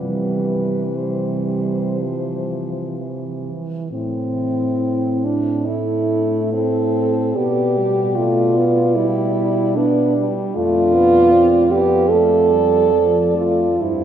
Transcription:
french horn
0.00 C3 E3 G3 B4
0.98 G3 C5
1.98 F3
2.96 E3
3.91 A2 C4 E4
5.24 D4
5.64 A3 E4
6.52 C4 E4 A4
7.36 B2 B3 G4 D5
7.78 G3
8.16 A3 F4
8.56 B3
8.95 G3 E4
9.75 B3 D4 D5
10.17 G3
10.56 F2 A3 F4 D5
10.94 B3
11.32 C4
11.70 B3 G4
12.09 A3 A4 D5
12.52 G3
12.93 F3
13.35 A3 F4
13.79 G2 G3 E4 C5

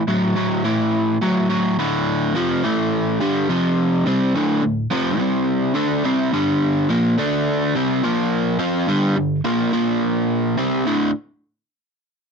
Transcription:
overdriven electric guitar
0.08 A2 F#3
0.35 A2 F#3
0.64 A2 E3
1.22 A2 F#3
1.49 A2 F#3
1.79 D2 A2 D3
2.35 F2 C3 F3
2.64 A2 E3 A3
3.20 G2 D3 G3
3.49 F2 C3 F3
4.06 C3 G3 C4
4.35 D2 A2 D3
4.63 D2 A2
4.91 F2 C3 F3
5.18 C3 G3 C4
5.75 D3 A3 D4
6.04 C3 G3 C4
6.33 G2 D3 G3
6.90 A#2 F3 A#3
7.18 D3 A3 D4
7.75 C3 G3 C4
8.03 A#2 F3 A#3
8.59 F3 C4 F4
8.87 G2 D3 G3
9.17 G2 D3
9.45 A#2 F3 A#3
9.72 A#2 F3 A#3
10.58 C3 G3 C4
10.86 D2 A2 D3

